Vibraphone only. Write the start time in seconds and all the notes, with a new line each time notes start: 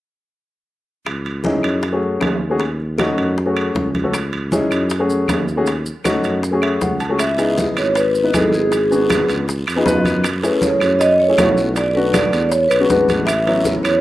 7.20 E5
7.77 C#5
7.96 B4
8.35 A4
8.55 G#4
10.45 B4
10.62 C#5
10.99 D#5
11.19 C#5
11.76 D5
11.95 B4
12.13 D5
12.49 C#5
12.69 B4
13.26 E5
13.83 C#5